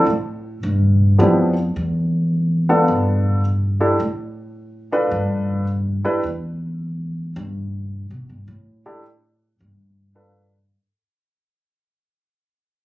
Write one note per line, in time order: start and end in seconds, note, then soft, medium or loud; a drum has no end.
0.06 0.61 A2 medium
0.63 1.17 G2 medium
1.19 1.73 F2 medium
1.19 1.53 F3 medium
1.19 1.53 B3 medium
1.19 1.53 D4 soft
1.19 1.53 E4 soft
1.19 1.53 G4 medium
1.76 2.84 E2 medium
2.69 3.40 B3 medium
2.69 3.40 D4 medium
2.69 3.40 F4 medium
2.69 3.40 A4 medium
2.88 3.96 G2 medium
3.80 3.97 D4 medium
3.80 3.97 E4 medium
3.80 3.98 G4 medium
3.80 3.97 A4 medium
4.00 5.08 A2 medium
4.92 5.64 D4 medium
4.92 5.64 F4 medium
4.92 5.64 A4 medium
4.92 5.64 B4 medium
5.11 6.01 G2 medium
6.05 6.22 D4 medium
6.05 6.22 E4 medium
6.05 6.22 G4 medium
6.05 6.22 B4 medium
6.05 muted upright bass stroke soft
6.23 7.32 E2 medium
7.36 8.07 G2 medium
8.10 8.28 B2 medium
8.29 8.47 G2 medium
8.48 9.56 A2 medium
8.86 9.03 D4 medium
8.86 9.03 E4 medium
8.86 9.03 G4 medium
8.86 9.03 A4 medium
9.60 10.69 G2 medium
10.15 10.50 D4 soft
10.15 10.50 F4 soft
10.15 10.50 A4 soft
10.15 10.50 B4 medium